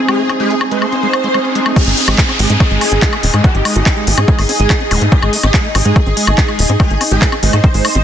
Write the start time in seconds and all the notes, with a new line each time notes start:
Already playing: C4 D#4 G#4 C5, riser
0.09 G#3 G#4, closed hi-hat, high woodblock
0.19 A3, closed hi-hat
0.29 C4, closed hi-hat, high woodblock
0.40 G#3 G#4, closed hi-hat
0.50 A3, closed hi-hat
0.61 C4, closed hi-hat, high woodblock
0.71 G#3 C5, closed hi-hat
0.82 A3, closed hi-hat, high woodblock
0.92 C4, closed hi-hat
1.03 G#3, closed hi-hat
1.13 closed hi-hat, high woodblock
1.24 G#3, closed hi-hat
1.34 G#3, closed hi-hat, high woodblock
1.45 closed hi-hat
1.55 G#3, closed hi-hat
1.66 A3, closed hi-hat, high woodblock
1.76 G#3 D#4 G#4 D#5, kick, closed hi-hat, crash, downlifter, high woodblock
1.87 G#1 A3, closed hi-hat
1.97 C4, open hi-hat
2.08 G#1 G#3 G#4, closed hi-hat, high woodblock
2.17 A3 D#5, kick, clap, closed hi-hat
2.29 C4, closed hi-hat, high woodblock
2.39 G#1 G#3 G#4, open hi-hat
2.50 G#2 A3, closed hi-hat
2.60 C4, kick, closed hi-hat, high woodblock
2.71 G#1 G#3, closed hi-hat
2.81 A3, open hi-hat, high woodblock
2.92 G#1 C4, closed hi-hat
3.02 G#3, kick, clap, closed hi-hat
3.13 A3, closed hi-hat, high woodblock
3.23 D#1 C4, open hi-hat
3.34 G#2 G#3, closed hi-hat, high woodblock
3.44 A3 G4, kick, closed hi-hat
3.55 G#1 C4, closed hi-hat
3.65 G#3, open hi-hat, high woodblock
3.76 G#1 A3 G4, closed hi-hat
3.86 C4, kick, clap, closed hi-hat, high woodblock
3.97 G#3, closed hi-hat
4.07 G#1 A3 G#4, open hi-hat
4.18 G#2 C4, closed hi-hat, high woodblock
4.28 G#3, kick, closed hi-hat
4.39 G#1 A3, open hi-hat, high woodblock
4.49 C4, open hi-hat
4.59 G#1 G#3, closed hi-hat
4.70 A3, kick, clap, closed hi-hat, high woodblock
4.80 C4, closed hi-hat
4.91 D#1 G#3, open hi-hat, zap, high woodblock
5.01 G#2 A3, closed hi-hat
5.12 C4 G#4, kick, closed hi-hat
5.22 G#1 G#3, closed hi-hat, high woodblock
5.33 A3, open hi-hat
5.43 G#1 C4 G#4, closed hi-hat, high woodblock
5.54 G#3, kick, clap, closed hi-hat
5.64 A3, closed hi-hat
5.75 G#1 C4 G#4, open hi-hat, high woodblock
5.85 G#2 G#3, closed hi-hat
5.96 A3, kick, closed hi-hat, high woodblock
6.06 G#1 C4, closed hi-hat
6.17 G#3, open hi-hat
6.27 G#1 A3, high woodblock
6.38 C4, kick, clap, closed hi-hat
6.48 G#3, closed hi-hat, high woodblock
6.59 D#1 A3, open hi-hat
6.69 G#2 C4, closed hi-hat
6.80 G#3 G#4, kick, closed hi-hat, high woodblock
6.90 G#1 A3, closed hi-hat
7.01 C4, open hi-hat, high woodblock
7.11 G#1 G#3 G#4, closed hi-hat
7.22 A3, kick, clap, closed hi-hat
7.32 C4, closed hi-hat, high woodblock
7.43 G#1 G#3 C5, open hi-hat
7.53 G#2 A3, closed hi-hat, high woodblock
7.64 C4, kick, closed hi-hat
7.74 G#1 G#3, open hi-hat
7.85 A3, open hi-hat, high woodblock
7.95 G#1 C4, closed hi-hat